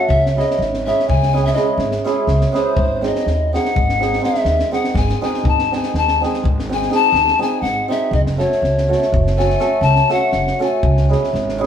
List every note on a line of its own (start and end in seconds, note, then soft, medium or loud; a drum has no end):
0.08 0.39 C#2 medium
0.08 0.36 E5 medium
0.08 kick medium
0.26 snare soft
0.35 0.85 G#3 medium
0.35 0.54 C#4 soft
0.35 0.54 E4 medium
0.35 0.54 G#4 medium
0.35 0.64 D#5 medium
0.39 snare soft
0.51 snare soft
0.59 0.89 G#1 medium
0.59 snare soft
0.74 snare soft
0.86 1.32 G#3 medium
0.86 1.04 C#4 medium
0.86 1.04 E4 medium
0.86 1.04 G#4 medium
0.86 1.08 E5 medium
0.86 snare soft
1.00 snare soft
1.09 1.50 C#2 loud
1.09 1.47 G#5 loud
1.09 kick medium
1.23 snare soft
1.33 1.53 G#3 medium
1.33 1.50 C#4 soft
1.33 1.51 E4 medium
1.33 1.51 G#4 medium
1.33 snare soft
1.45 1.55 E5 medium
1.45 snare soft
1.53 2.03 G#3 medium
1.53 1.72 C#4 medium
1.53 1.72 E4 medium
1.53 1.72 G#4 medium
1.53 1.76 D#5 medium
1.53 snare soft
1.78 1.94 G#1 loud
1.78 snare soft
1.91 snare soft
2.04 2.51 G#3 medium
2.04 2.22 C#4 medium
2.04 2.22 E4 medium
2.04 2.22 G#4 medium
2.04 snare soft
2.27 2.44 C#2 medium
2.27 snare soft
2.41 snare soft
2.52 2.82 G#3 medium
2.52 2.71 C#4 medium
2.52 2.71 E4 medium
2.52 2.71 G#4 medium
2.52 3.07 C5 medium
2.52 snare soft
2.77 3.07 G#1 medium
2.77 kick medium
3.01 3.52 G#3 medium
3.01 3.20 C4 medium
3.01 3.20 D#4 medium
3.01 3.21 G#4 medium
3.01 snare soft
3.06 3.55 D#5 medium
3.15 snare soft
3.26 3.56 D#2 medium
3.26 snare soft
3.53 3.98 G#3 medium
3.53 3.71 C4 medium
3.53 3.71 D#4 medium
3.53 3.71 G#4 medium
3.53 4.26 F#5 loud
3.53 snare soft
3.65 snare soft
3.76 4.17 G#1 loud
3.76 kick medium
3.89 snare soft
4.00 4.20 G#3 medium
4.00 4.17 C4 medium
4.00 4.18 D#4 medium
4.00 4.18 G#4 medium
4.00 snare soft
4.13 snare soft
4.21 4.70 G#3 medium
4.21 4.39 C4 medium
4.21 4.39 D#4 medium
4.21 4.40 G#4 medium
4.21 4.74 E5 loud
4.21 snare soft
4.35 snare soft
4.45 4.61 D#2 medium
4.45 snare soft
4.59 snare soft
4.71 5.20 G#3 medium
4.71 4.89 C4 medium
4.71 4.90 D#4 medium
4.71 4.90 G#4 medium
4.71 4.98 F#5 medium
4.71 snare soft
4.84 snare soft
4.94 5.11 G#1 loud
4.94 5.23 G#5 loud
4.94 kick medium
4.94 snare soft
5.09 snare soft
5.21 5.50 G#3 medium
5.21 5.39 C4 medium
5.21 5.39 D#4 medium
5.21 5.39 G#4 medium
5.21 5.50 G#5 medium
5.21 snare soft
5.34 snare soft
5.44 5.74 G#1 medium
5.44 kick medium
5.48 5.77 A5 medium
5.59 snare soft
5.71 6.19 G#3 medium
5.71 5.89 C4 medium
5.71 5.90 D#4 medium
5.71 5.90 G#4 medium
5.71 snare soft
5.76 5.97 G#5 medium
5.83 snare soft
5.94 6.24 D#2 medium
5.94 6.26 A5 medium
5.94 snare soft
6.08 snare soft
6.20 6.68 G#3 medium
6.20 6.39 C4 medium
6.20 6.39 D#4 soft
6.20 6.40 G#4 medium
6.20 snare soft
6.25 6.46 G#5 medium
6.34 snare soft
6.44 6.85 G#1 loud
6.44 kick medium
6.59 snare soft
6.69 6.89 G#3 medium
6.69 6.86 C4 medium
6.69 6.86 D#4 medium
6.69 6.87 G#4 medium
6.69 snare soft
6.74 6.96 G#5 loud
6.82 snare soft
6.90 7.37 G#3 medium
6.90 7.07 C4 medium
6.90 7.08 D#4 medium
6.90 7.08 G#4 medium
6.90 snare soft
6.94 7.44 A5 loud
7.12 7.29 D#2 loud
7.12 snare soft
7.28 snare soft
7.38 7.87 G#3 medium
7.38 7.57 C4 medium
7.38 7.57 D#4 medium
7.38 7.57 G#4 medium
7.38 7.63 G#5 medium
7.38 snare soft
7.62 7.79 G#1 medium
7.62 7.89 F#5 loud
7.62 snare soft
7.88 8.19 G#3 medium
7.88 8.07 C4 medium
7.88 8.07 D#4 medium
7.88 8.08 G#4 medium
7.88 8.11 E5 medium
7.88 snare soft
8.11 8.42 F#1 medium
8.11 8.20 D#5 medium
8.11 kick medium
8.26 snare soft
8.37 8.56 A3 medium
8.37 8.56 C#4 medium
8.37 8.57 F#4 medium
8.37 8.57 A4 medium
8.37 9.09 C#5 medium
8.37 snare soft
8.52 snare soft
8.62 8.93 C#2 medium
8.62 snare soft
8.78 snare soft
8.88 9.07 A3 medium
8.88 9.07 C#4 medium
8.88 9.07 F#4 medium
8.88 9.08 A4 medium
8.88 snare soft
9.02 snare soft
9.12 9.54 F#1 loud
9.12 kick medium
9.27 snare soft
9.36 9.54 A3 medium
9.36 9.55 C#4 medium
9.36 9.55 F#4 medium
9.36 9.55 A4 medium
9.36 9.84 G#5 loud
9.36 snare soft
9.50 snare soft
9.60 9.77 A3 medium
9.60 9.77 C#4 medium
9.60 9.77 F#4 medium
9.60 9.77 A4 medium
9.60 snare soft
9.81 9.98 C#2 loud
9.81 10.14 A5 loud
9.81 snare soft
9.96 snare soft
10.09 10.27 A3 medium
10.09 10.27 C#4 medium
10.09 10.27 F#4 medium
10.09 10.27 A4 medium
10.09 10.62 F#5 medium
10.09 snare soft
10.32 10.49 F#1 medium
10.32 snare soft
10.47 snare soft
10.59 10.77 A3 medium
10.59 10.77 C#4 medium
10.59 10.77 F#4 medium
10.59 10.77 A4 medium
10.59 snare soft
10.64 11.31 G#5 medium
10.83 11.13 C#2 medium
10.83 kick medium
10.97 snare soft
11.09 11.57 G#3 medium
11.09 11.27 C#4 medium
11.09 11.27 E4 medium
11.09 11.27 G#4 medium
11.09 snare soft
11.24 snare soft
11.33 11.63 G#1 medium
11.33 snare soft
11.49 snare soft
11.58 11.66 G#3 medium
11.58 11.66 C#4 medium
11.58 11.66 E4 medium
11.58 11.66 G#4 medium
11.63 snare soft